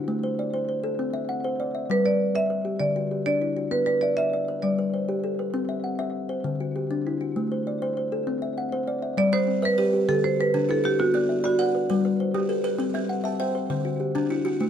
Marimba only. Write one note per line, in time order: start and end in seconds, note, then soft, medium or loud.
1.91 2.05 B4 medium
2.06 2.34 D5 medium
2.35 2.82 E5 medium
2.80 3.25 D5 medium
3.26 3.73 D5 medium
3.71 3.85 B4 medium
3.86 4.01 B4 medium
4.01 4.17 D5 medium
4.17 4.64 E5 medium
4.62 5.35 D5 medium
9.18 9.32 D5 loud
9.33 9.64 C5 medium
9.65 10.07 B4 medium
10.09 10.23 A4 medium
10.24 10.40 C5 medium
10.41 10.68 B4 medium
10.71 10.86 A4 medium
10.85 10.99 G4 medium
11.00 11.42 F#4 medium
11.45 12.31 F#4 medium